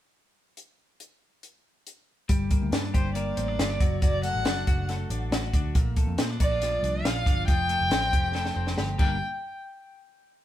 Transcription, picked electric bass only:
2.29 2.57 G1 medium
2.62 2.71 D2 medium
2.72 2.91 G2 loud
2.94 3.31 G1 medium
3.38 3.56 A1 medium
3.59 3.77 G1 medium
3.80 3.99 F#1 medium
4.02 4.30 F#1 medium
4.35 4.46 A1 medium
4.46 4.64 F#1 medium
4.67 5.04 F#1 medium
5.10 5.29 A1 medium
5.32 5.50 A1 medium
5.54 5.72 D2 medium
5.75 6.03 A#1 medium
6.07 6.17 F2 medium
6.18 6.37 A#2 medium
6.40 6.77 A#1 medium
6.83 7.01 C2 medium
7.05 7.23 A#1 medium
7.27 7.45 G1 medium
7.48 7.76 F1 medium
7.81 7.92 F1 medium
7.92 8.10 A1 medium
8.13 8.50 F1 medium
8.56 8.75 F1 medium
8.78 8.96 G1 medium
8.99 9.19 G1 medium

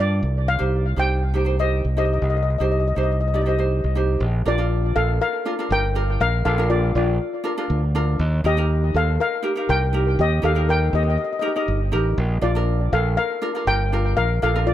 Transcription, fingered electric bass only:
0.00 0.20 G2 medium
0.23 0.57 C2 medium
0.60 0.94 C2 medium
0.97 1.81 C2 medium
1.85 2.18 C2 medium
2.22 2.56 C2 medium
2.60 2.93 C2 medium
2.97 3.80 C2 medium
3.84 4.18 C2 medium
4.20 4.43 A#1 loud
4.46 4.92 A#1 medium
4.96 5.18 A#1 loud
5.70 6.16 G1 medium
6.20 6.43 A#1 loud
6.46 6.91 A#1 loud
6.95 7.18 A#1 loud
7.70 8.15 D2 loud
8.19 8.42 D#2 loud
8.44 8.90 D#2 loud
8.94 9.17 D#2 loud
9.69 10.15 C2 loud
10.19 10.41 D#2 loud
10.43 10.89 D#2 medium
10.93 11.16 D#2 loud
11.68 11.90 G1 medium
11.94 12.16 A1 medium
12.18 12.40 A#1 loud
12.42 12.88 A#1 medium
12.93 13.15 A#1 loud
13.67 14.13 G1 loud
14.17 14.40 A#1 loud
14.43 14.74 A#1 medium

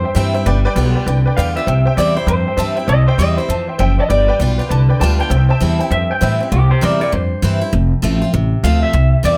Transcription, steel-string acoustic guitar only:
0.00 0.43 G2 medium
0.15 0.33 E3 medium
0.15 0.34 G3 medium
0.15 0.34 C4 medium
0.15 0.33 E4 loud
0.34 0.46 C4 medium
0.34 0.45 E4 medium
0.46 0.75 G3 medium
0.76 1.05 G3 medium
0.76 1.06 B3 medium
0.76 1.06 F4 medium
1.08 1.66 D3 medium
1.37 1.56 G3 medium
1.37 1.56 B3 loud
1.37 1.55 F4 loud
1.57 1.68 B3 medium
1.57 1.67 F4 medium
1.68 2.26 C3 medium
1.98 2.16 E3 medium
1.98 2.16 G3 medium
1.98 2.17 C4 medium
1.98 2.15 E4 loud
2.17 2.28 C4 medium
2.17 2.27 E4 medium
2.28 2.87 G2 medium
2.58 2.76 E3 medium
2.58 2.77 G3 medium
2.58 2.77 C4 medium
2.58 2.76 E4 loud
2.77 2.89 C4 medium
2.77 2.88 E4 medium
2.89 3.47 C3 medium
3.19 3.37 E3 medium
3.19 3.38 G3 medium
3.19 3.38 C4 medium
3.19 3.37 E4 medium
3.38 3.50 C4 medium
3.38 3.49 E4 medium
3.50 3.79 E3 medium
3.79 4.08 F3 medium
4.10 4.38 G3 medium
4.40 4.58 G3 medium
4.40 4.59 B3 medium
4.40 4.58 F4 medium
4.59 4.71 B3 soft
4.59 4.70 F4 medium
4.71 5.29 D3 medium
5.01 5.19 G3 medium
5.01 5.20 B3 loud
5.01 5.19 F4 loud
5.20 5.32 B3 medium
5.20 5.31 F4 medium
5.31 5.89 C3 medium
5.60 5.79 E3 medium
5.60 5.80 G3 medium
5.60 5.80 C4 medium
5.60 5.79 E4 medium
5.80 5.92 C4 medium
5.80 5.91 E4 medium
5.91 6.50 G2 medium
6.21 6.40 E3 medium
6.21 6.40 G3 medium
6.21 6.40 C4 loud
6.21 6.39 E4 loud
6.40 6.53 C4 soft
6.40 6.52 E4 medium
6.52 7.10 C3 medium
6.81 7.00 E3 medium
6.81 7.01 G3 loud
6.81 7.01 C4 medium
6.81 7.00 E4 loud
7.01 7.13 C4 medium
7.01 7.12 E4 medium
7.12 7.71 G2 medium
7.42 7.61 E3 loud
7.42 7.61 G3 medium
7.42 7.62 C4 loud
7.42 7.60 E4 medium
7.61 7.74 C4 medium
7.61 7.73 E4 medium
7.73 8.31 F2 medium
8.02 8.21 F3 medium
8.02 8.22 A3 loud
8.02 8.22 C4 medium
8.02 8.20 F4 loud
8.22 8.34 C4 medium
8.22 8.33 F4 medium
8.34 8.92 C3 medium
8.64 8.93 F3 medium
8.64 8.93 A3 loud
8.64 8.94 C4 medium
8.64 8.94 F4 loud
8.93 9.38 C3 medium
9.23 9.38 E3 medium
9.23 9.38 G3 medium
9.23 9.38 C4 medium
9.23 9.38 E4 loud

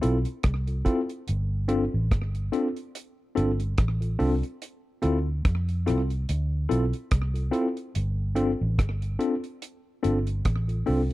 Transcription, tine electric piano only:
0.01 0.17 C4 medium
0.01 0.17 E4 medium
0.01 0.17 F4 medium
0.01 0.17 A4 loud
0.67 0.75 F4 soft
0.67 0.75 A4 soft
0.85 1.00 C4 loud
0.85 1.00 E4 medium
0.85 1.00 F4 medium
0.85 1.00 A4 loud
1.68 1.83 C4 loud
1.68 1.84 D4 medium
1.68 1.84 F4 medium
1.68 1.84 A4 loud
2.52 2.67 C4 medium
2.52 2.67 D4 medium
2.52 2.67 F4 medium
2.52 2.67 A4 loud
3.35 3.50 C4 medium
3.35 3.50 D4 medium
3.35 3.50 F4 medium
3.35 3.51 A4 loud
4.00 4.08 F4 soft
4.00 4.08 A4 soft
4.19 4.34 C4 loud
4.19 4.34 D4 medium
4.19 4.34 F4 medium
4.19 4.34 A4 loud
5.02 5.17 C4 medium
5.02 5.17 E4 medium
5.02 5.17 F4 medium
5.02 5.17 A4 loud
5.86 6.01 C4 medium
5.86 6.01 E4 medium
5.86 6.01 F4 medium
5.86 6.01 A4 loud
6.69 6.84 C4 medium
6.69 6.84 E4 medium
6.69 6.84 F4 medium
6.69 6.84 A4 loud
7.34 7.42 F4 soft
7.34 7.42 A4 soft
7.51 7.67 C4 loud
7.51 7.67 E4 medium
7.51 7.67 F4 medium
7.51 7.67 A4 loud
8.35 8.51 C4 loud
8.35 8.51 D4 medium
8.35 8.51 F4 medium
8.35 8.51 A4 loud
9.19 9.34 C4 medium
9.19 9.34 D4 medium
9.19 9.34 F4 medium
9.19 9.34 A4 loud
10.03 10.18 C4 medium
10.03 10.18 D4 medium
10.03 10.18 F4 medium
10.03 10.18 A4 loud
10.68 10.76 F4 soft
10.68 10.76 A4 soft
10.86 11.01 C4 loud
10.86 11.01 D4 medium
10.86 11.01 F4 medium
10.86 11.01 A4 loud

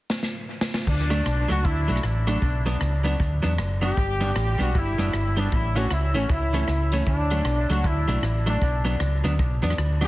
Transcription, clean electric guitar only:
1.10 1.20 F#3 medium
1.10 1.20 A3 medium
1.10 1.21 D4 medium
1.48 1.59 F#3 medium
1.48 1.59 A3 medium
1.48 1.59 D4 medium
1.88 1.98 F#3 medium
1.88 1.98 A3 medium
1.88 1.99 D4 medium
2.27 2.37 F#3 medium
2.27 2.37 A3 medium
2.27 2.38 D4 medium
2.66 2.76 F#3 medium
2.66 2.76 B3 medium
2.66 2.76 D4 medium
3.04 3.14 F#3 medium
3.04 3.14 B3 medium
3.04 3.15 D4 medium
3.42 3.53 F#3 medium
3.42 3.53 B3 medium
3.42 3.53 D4 loud
3.82 3.92 F#3 medium
3.82 3.92 B3 medium
3.82 3.92 D4 medium
4.20 4.30 G3 medium
4.20 4.31 B3 medium
4.20 4.31 D4 medium
4.58 4.69 G3 medium
4.58 4.69 B3 medium
4.58 4.69 D4 medium
4.98 5.08 G3 medium
4.98 5.08 B3 medium
4.98 5.09 D4 loud
5.37 5.47 G3 medium
5.37 5.47 B3 medium
5.37 5.47 D4 medium
5.76 5.85 E3 medium
5.76 5.86 A3 medium
5.76 5.86 C#4 loud
6.14 6.24 E3 medium
6.14 6.24 A3 medium
6.14 6.25 C#4 medium
6.53 6.63 E3 medium
6.53 6.63 A3 medium
6.53 6.63 C#4 loud
6.93 7.02 E3 medium
6.93 7.02 A3 medium
6.93 7.02 C#4 medium
7.31 7.41 F#3 medium
7.31 7.41 A3 medium
7.31 7.41 D4 medium
7.70 7.79 F#3 medium
7.70 7.80 A3 medium
7.70 7.80 D4 loud
8.08 8.18 F#3 medium
8.08 8.18 A3 medium
8.08 8.18 D4 medium
8.46 8.56 F#3 medium
8.46 8.57 A3 medium
8.46 8.57 D4 loud
8.85 8.95 F#3 medium
8.85 8.95 B3 medium
8.85 8.95 D4 medium
9.24 9.34 F#3 medium
9.24 9.34 B3 medium
9.24 9.34 D4 loud
9.62 9.72 F#3 medium
9.62 9.73 B3 medium
9.62 9.73 D4 loud
10.01 10.08 F#3 loud
10.01 10.08 B3 medium
10.01 10.08 D4 loud

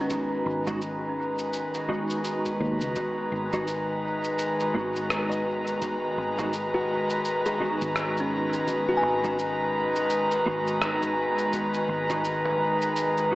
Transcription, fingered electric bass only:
0.00 0.43 G#1 medium
0.46 1.86 G#1 medium
2.60 2.79 D#2 medium
2.81 2.94 C#2 medium
3.32 4.72 G#1 medium
4.75 6.15 G#1 medium
6.18 7.58 G#1 medium
7.82 9.01 G#1 medium
9.03 10.43 G#1 medium
10.46 11.86 G#1 medium
11.89 13.29 G#1 medium

